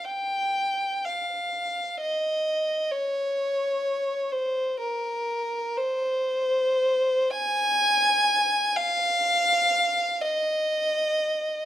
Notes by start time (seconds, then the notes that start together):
0.05 G5
1.05 F5
2.01 D#5
2.91 C#5
4.32 C5
4.80 A#4
5.78 C5
7.30 G#5
8.76 F5
10.21 D#5